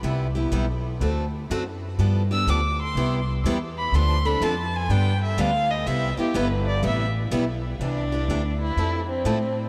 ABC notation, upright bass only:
X:1
M:4/4
L:1/8
Q:"Swing" 1/4=124
K:C
V:1 name="Upright bass" clef=bass
C,,2 B,,,2 D,,2 ^F,,2 | G,,2 D,,2 C,,2 E,,2 | D,,2 F,,2 G,,2 D,,2 | C,, z G,,,2 A,,,2 B,,,2 |
C,,2 D,,2 F,,2 A,,2 |]